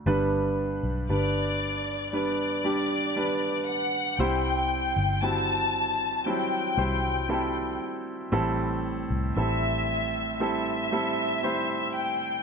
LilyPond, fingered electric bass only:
\new Staff \with { instrumentName = "Fingered electric bass" } { \clef bass \time 4/4 \key g \major \tempo 4 = 58 g,,8. b,,16 g,,2. | c,8. g,,4. r16 c,4 r8 | a,,8. c,16 a,,2. | }